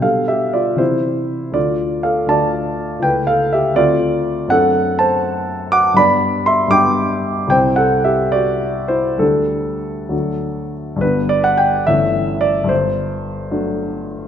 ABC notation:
X:1
M:6/8
L:1/16
Q:3/8=78
K:Ddor
V:1 name="Grand piano"
[Af]2 [Ge]2 [Fd]2 [Ec]6 | [Fd]4 [Af]2 [da]6 | [Bg]2 [Af]2 [Ge]2 [Fd]6 | [K:G] [Af]4 [ca]6 [fd']2 |
[db]4 [ec']2 [gd']6 | [cg]2 [Af]2 [Ge]2 [Fd]4 [Ec]2 | [DA]8- [DA]2 z2 | B2 d f g2 e4 d2 |
c8- c2 z2 |]
V:2 name="Grand piano"
[B,,G,DG]6 [C,E,G]6 | [D,,A,D]6 [D,,A,DF]6 | [^C,,A,E]6 [D,,A,=C]6 | [K:G] [F,,A,CD]12 |
[G,,G,B,D]6 [G,,G,B,D]6 | [C,,G,CE]12 | [D,,G,A,]6 [D,,F,A,D]6 | [G,,,G,,G,B,D]6 [G,,,G,,E,A,^C]6 |
[G,,,G,,]6 [F,A,D]6 |]